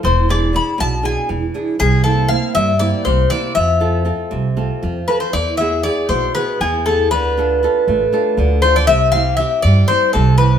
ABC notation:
X:1
M:7/8
L:1/16
Q:1/4=119
K:none
V:1 name="Bouzouki"
c2 d2 b2 a2 ^g2 z4 | ^G2 A2 f2 e2 d2 c2 d2 | e12 B c | d2 e2 d2 c2 B2 ^G2 A2 |
B12 c d | e2 f2 e2 d2 c2 A2 B2 |]
V:2 name="Nylon-string guitar"
E,2 [DE^G]2 [DEG]2 B,,2 [DEG]2 E,2 [DEG]2 | C,2 [_B,CE]2 [B,CE]2 G,2 [B,CE]2 C,2 [B,CE]2 | F,2 [CFA]2 [CFA]2 C,2 [CFA]2 F,2 [CFA]2 | E,2 [B,E^G]2 [B,EG]2 B,,2 [B,EG]2 E,2 [B,EG]2 |
D,2 [DFA]2 [DFA]2 A,2 [DFA]2 D,2 [DFA]2 | C,2 [CEG]2 [CEG]2 G,2 [CEG]2 C,2 [CEG]2 |]
V:3 name="Upright bass" clef=bass
E,,,6 B,,,4 E,,,2 z2 | C,,6 G,,4 C,,2 z2 | F,,6 C,,4 F,,2 z2 | E,,6 B,,,2 z2 E,,4 |
D,,6 A,,,2 z2 D,,4 | C,,6 G,,2 z2 C,,4 |]